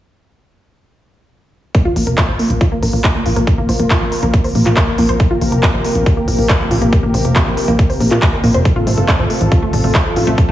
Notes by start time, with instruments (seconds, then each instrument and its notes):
1.74 analog synth pad C3 F3 A#3 F4 A#4, synth arpeggio sound A#3, kick, closed hi-hat
1.85 analog synth bass A#1, synth arpeggio sound F4
1.96 analog synth bass A#1, synth arpeggio sound A#3, open hi-hat
2.07 analog synth bass F1, synth arpeggio sound A#4, closed hi-hat
2.18 synth arpeggio sound A#3, kick, clap, closed hi-hat
2.28 analog synth bass A#1, synth arpeggio sound C5
2.39 synth arpeggio sound A#3, open hi-hat
2.50 analog synth bass A#1, closed hi-hat
2.61 synth arpeggio sound F4, kick, closed hi-hat
2.72 synth arpeggio sound A#3
2.82 analog synth bass A#1, synth arpeggio sound A#4, open hi-hat
2.93 analog synth bass A#1, synth arpeggio sound A#3, open hi-hat
3.04 kick, clap, closed hi-hat
3.15 synth arpeggio sound A#3
3.26 analog synth bass A#1, synth arpeggio sound F4, open hi-hat
3.36 analog synth bass A#1, synth arpeggio sound A#3, closed hi-hat
3.47 synth arpeggio sound A#4, kick, closed hi-hat
3.58 analog synth bass A#1, synth arpeggio sound A#3
3.69 analog synth bass A#1, synth arpeggio sound C5, open hi-hat
3.80 analog synth bass F1, synth arpeggio sound A#3, closed hi-hat
3.90 synth arpeggio sound F4, kick, clap, closed hi-hat
4.01 analog synth bass A#1, synth arpeggio sound A#3
4.12 synth arpeggio sound A#4, open hi-hat
4.23 analog synth bass A#1, synth arpeggio sound A#3, closed hi-hat
4.34 kick, closed hi-hat
4.44 synth arpeggio sound C5, open hi-hat
4.55 analog synth bass A#1, synth arpeggio sound A#3, open hi-hat
4.66 analog synth bass A#1, synth arpeggio sound F4, clap, closed hi-hat
4.77 synth arpeggio sound A#3, kick, clap, closed hi-hat
4.88 synth arpeggio sound A#4
4.98 analog synth bass A#1, synth arpeggio sound A#3, open hi-hat
5.09 analog synth bass A#1, synth arpeggio sound C5, closed hi-hat
5.20 synth arpeggio sound A#3, analog synth pad G4, kick, closed hi-hat
5.31 analog synth bass A#1, synth arpeggio sound F4
5.41 analog synth bass A#1, synth arpeggio sound A#3, open hi-hat
5.52 analog synth bass F1, synth arpeggio sound A#4, closed hi-hat
5.63 synth arpeggio sound A#3, kick, clap, closed hi-hat
5.74 analog synth bass A#1, synth arpeggio sound C5
5.85 synth arpeggio sound A#3, open hi-hat
5.95 analog synth bass A#1, closed hi-hat
6.06 synth arpeggio sound F4, kick, closed hi-hat
6.17 synth arpeggio sound A#3
6.28 analog synth bass A#1, synth arpeggio sound A#4, open hi-hat
6.38 analog synth bass A#1, synth arpeggio sound A#3, open hi-hat
6.49 synth arpeggio sound C5, kick, clap, closed hi-hat
6.60 synth arpeggio sound A#3
6.71 analog synth bass A#1, synth arpeggio sound F4, open hi-hat
6.82 analog synth bass A#1, synth arpeggio sound A#3, closed hi-hat
6.92 synth arpeggio sound A#4, kick, closed hi-hat
7.03 analog synth bass A#1, synth arpeggio sound A#3
7.14 analog synth bass A#1, synth arpeggio sound C5, open hi-hat
7.25 analog synth bass F1, synth arpeggio sound A#3, closed hi-hat
7.36 synth arpeggio sound F4, kick, clap, closed hi-hat
7.46 analog synth bass A#1, synth arpeggio sound A#3
7.57 synth arpeggio sound A#4, open hi-hat
7.68 analog synth bass A#1, synth arpeggio sound A#3, closed hi-hat
7.79 kick, closed hi-hat
7.90 synth arpeggio sound C5, open hi-hat
8.00 analog synth bass A#1, synth arpeggio sound A#3, open hi-hat
8.11 analog synth bass A#2, synth arpeggio sound F4, clap, closed hi-hat
8.22 synth arpeggio sound A#3, kick, clap, closed hi-hat
8.33 synth arpeggio sound A#4
8.44 analog synth bass A#1, synth arpeggio sound A#3, open hi-hat
8.54 analog synth bass F1, synth arpeggio sound C5, closed hi-hat
8.65 analog synth pad F3 A3 F4 A4, synth arpeggio sound A3, kick, closed hi-hat
8.76 analog synth bass A1, synth arpeggio sound F4
8.87 analog synth bass A1, synth arpeggio sound A3, open hi-hat
8.98 analog synth bass G1, synth arpeggio sound A4, closed hi-hat
9.08 synth arpeggio sound A3, kick, clap, closed hi-hat
9.19 analog synth bass A1, synth arpeggio sound C5
9.30 synth arpeggio sound A3, open hi-hat
9.41 analog synth bass A1, closed hi-hat
9.52 synth arpeggio sound F4, kick, closed hi-hat
9.62 synth arpeggio sound A3
9.73 analog synth bass A1, synth arpeggio sound A4, open hi-hat
9.84 analog synth bass A1, synth arpeggio sound A3, open hi-hat
9.95 synth arpeggio sound C5, kick, clap, closed hi-hat
10.06 synth arpeggio sound A3
10.16 analog synth bass A1, synth arpeggio sound F4, open hi-hat
10.27 analog synth bass A1, synth arpeggio sound A3, closed hi-hat
10.38 synth arpeggio sound A4, kick, closed hi-hat
10.49 analog synth bass A1, synth arpeggio sound A3